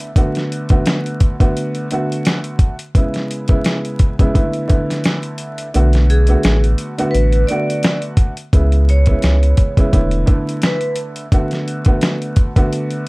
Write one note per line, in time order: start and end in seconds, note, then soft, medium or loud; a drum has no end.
0.00 closed hi-hat medium
0.16 0.66 D3 loud
0.16 0.66 A3 medium
0.16 0.66 B3 medium
0.16 0.67 F#4 loud
0.16 kick loud
0.16 closed hi-hat loud
0.35 snare soft
0.35 closed hi-hat soft
0.52 closed hi-hat medium
0.69 1.34 D3 medium
0.69 1.34 A3 medium
0.69 1.34 B3 medium
0.69 1.35 F#4 medium
0.69 kick medium
0.69 closed hi-hat soft
0.86 snare loud
0.86 closed hi-hat medium
1.06 closed hi-hat soft
1.20 kick medium
1.20 closed hi-hat medium
1.40 1.86 D3 medium
1.40 1.87 A3 medium
1.40 1.87 B3 loud
1.40 1.87 F#4 loud
1.40 kick loud
1.40 closed hi-hat medium
1.57 closed hi-hat medium
1.75 closed hi-hat soft
1.91 2.73 D3 medium
1.91 2.73 A3 medium
1.91 2.73 B3 medium
1.91 2.73 F#4 loud
1.91 closed hi-hat medium
2.12 closed hi-hat medium
2.25 snare loud
2.25 closed hi-hat loud
2.44 closed hi-hat soft
2.59 kick medium
2.59 closed hi-hat medium
2.79 closed hi-hat medium
2.95 3.45 C#3 medium
2.95 3.45 G#3 medium
2.95 3.45 B3 medium
2.95 3.46 E4 medium
2.95 kick loud
2.95 closed hi-hat loud
3.14 snare soft
3.14 closed hi-hat soft
3.31 closed hi-hat medium
3.48 4.13 C#3 medium
3.48 4.13 G#3 medium
3.48 4.13 B3 medium
3.48 4.13 E4 loud
3.48 kick medium
3.48 closed hi-hat medium
3.64 snare loud
3.64 closed hi-hat medium
3.85 closed hi-hat soft
3.99 kick medium
3.99 closed hi-hat medium
4.19 4.35 C#3 medium
4.19 4.35 G#3 medium
4.19 4.33 B3 medium
4.19 4.34 E4 loud
4.19 kick medium
4.19 closed hi-hat medium
4.34 4.66 D3 medium
4.34 4.67 A3 medium
4.34 4.67 B3 medium
4.34 4.68 E4 loud
4.34 kick medium
4.34 closed hi-hat medium
4.53 closed hi-hat soft
4.68 5.66 D3 loud
4.68 5.66 A3 medium
4.68 5.67 B3 medium
4.68 5.67 E4 medium
4.68 kick medium
4.68 closed hi-hat medium
4.90 snare soft
4.90 closed hi-hat medium
5.04 snare loud
5.04 closed hi-hat loud
5.23 closed hi-hat soft
5.38 closed hi-hat medium
5.58 closed hi-hat medium
5.74 6.36 B1 loud
5.74 6.24 D3 loud
5.74 6.24 A3 medium
5.74 6.24 B3 medium
5.74 6.25 F#4 loud
5.74 closed hi-hat loud
5.93 snare soft
5.93 closed hi-hat soft
6.10 6.61 G#4 medium
6.10 closed hi-hat medium
6.27 6.92 D3 medium
6.27 6.92 A3 medium
6.27 6.92 B3 medium
6.27 6.93 F#4 medium
6.27 closed hi-hat soft
6.43 6.75 A1 medium
6.43 snare loud
6.43 closed hi-hat medium
6.64 closed hi-hat soft
6.78 closed hi-hat medium
6.98 7.45 D3 loud
6.98 7.45 A3 medium
6.98 7.45 B3 medium
6.98 7.46 F#4 loud
6.98 closed hi-hat medium
7.11 7.45 A1 medium
7.11 7.43 B4 medium
7.11 closed hi-hat medium
7.33 closed hi-hat soft
7.47 8.31 D3 medium
7.47 8.31 A3 medium
7.47 8.31 B3 medium
7.47 8.31 F#4 loud
7.47 7.99 D5 medium
7.47 closed hi-hat medium
7.70 closed hi-hat medium
7.83 snare loud
7.83 closed hi-hat loud
8.02 closed hi-hat soft
8.17 kick medium
8.17 closed hi-hat medium
8.37 closed hi-hat medium
8.53 9.15 C#2 loud
8.53 9.03 C#3 medium
8.53 9.03 G#3 medium
8.53 9.03 B3 medium
8.53 9.04 E4 medium
8.53 kick loud
8.53 closed hi-hat loud
8.72 closed hi-hat soft
8.89 10.09 C#5 medium
8.89 closed hi-hat medium
9.06 9.71 C#3 medium
9.06 9.71 G#3 medium
9.06 9.71 B3 medium
9.06 9.71 E4 loud
9.06 kick medium
9.06 closed hi-hat soft
9.22 9.54 C#2 loud
9.22 snare loud
9.22 closed hi-hat medium
9.43 closed hi-hat soft
9.57 kick medium
9.57 closed hi-hat medium
9.77 9.93 C#3 medium
9.77 9.93 G#3 medium
9.77 9.92 B3 medium
9.77 9.92 E4 loud
9.77 kick loud
9.77 closed hi-hat medium
9.92 10.24 E1 loud
9.92 10.24 D3 medium
9.92 10.25 A3 medium
9.92 10.25 B3 medium
9.92 10.26 E4 loud
9.92 kick medium
9.92 closed hi-hat medium
10.11 closed hi-hat soft
10.26 11.24 D3 loud
10.26 11.24 A3 medium
10.26 11.25 B3 medium
10.26 11.25 E4 medium
10.26 kick medium
10.26 closed hi-hat medium
10.49 closed hi-hat medium
10.62 10.95 B4 medium
10.62 snare loud
10.62 closed hi-hat loud
10.81 closed hi-hat soft
10.96 closed hi-hat medium
11.16 closed hi-hat medium
11.32 11.82 D3 loud
11.32 11.82 A3 medium
11.32 11.83 B3 medium
11.32 11.83 F#4 loud
11.32 kick loud
11.32 closed hi-hat loud
11.51 snare soft
11.51 closed hi-hat soft
11.68 closed hi-hat medium
11.85 12.50 D3 medium
11.85 12.50 A3 medium
11.85 12.51 B3 medium
11.85 12.51 F#4 medium
11.85 kick loud
11.85 closed hi-hat medium
12.01 snare loud
12.01 closed hi-hat medium
12.22 closed hi-hat soft
12.36 kick medium
12.36 closed hi-hat medium
12.56 13.03 D3 loud
12.56 13.03 A3 medium
12.56 13.03 B3 medium
12.56 13.03 F#4 loud
12.56 kick loud
12.56 closed hi-hat medium
12.73 closed hi-hat medium
12.91 closed hi-hat soft